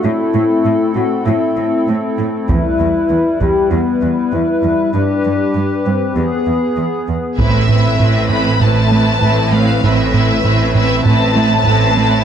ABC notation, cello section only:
X:1
M:4/4
L:1/8
Q:1/4=98
K:Ephr
V:1 name="Cello section" clef=bass
A,, A,, A,, A,, A,, A,, A,, A,, | E,, E,, E,, E,, E,, E,, E,, E,, | G,, G,, G,, G,, E,, E,, E,, E,, | [K:Am] A,,2 A,,2 A,,2 A,,2 |
A,,2 A,,2 A,,2 A,,2 |]